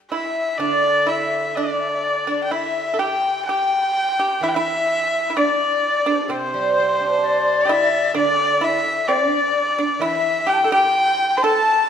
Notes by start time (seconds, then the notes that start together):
Already playing: A4 D5
0.11 E4 E5
0.58 D3 D4 D5
1.07 E4 E5
1.55 D4 D5
1.63 E5
1.71 D5
1.80 E5
1.89 D5
1.95 E5
2.04 D5
2.27 D4 D5
2.44 G5
2.51 E4 E5
2.94 A4
2.99 G4 G5
3.45 G4 G5
4.19 G4
4.41 E3 E4 E5
4.49 G5
4.55 E4 E5
5.30 E4
5.37 D4 D5
6.06 D4
6.11 A4 C5
6.19 D4 E4
6.24 G4 A4
6.28 C3 C4 C5
6.54 G3
6.79 C4
7.00 D4
7.22 G4 D5
7.65 G4
7.69 E4 E5
8.14 D3 D4 D5
8.61 E4 E5
9.08 C4 D5
9.28 D4
9.78 D4
9.99 E3 E4 E5
10.47 G4 G5
10.54 A5
10.60 G5
10.64 A4
10.72 G4 G5
11.37 C5 C6
11.43 A4 A5